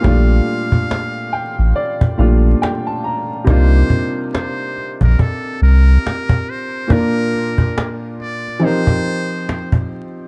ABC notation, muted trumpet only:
X:1
M:4/4
L:1/16
Q:"Swing 16ths" 1/4=70
K:Cdor
V:1 name="Muted trumpet"
f8- f2 z6 | c4 c3 B A2 B4 c2 | B4- B z d2 c6 z2 |]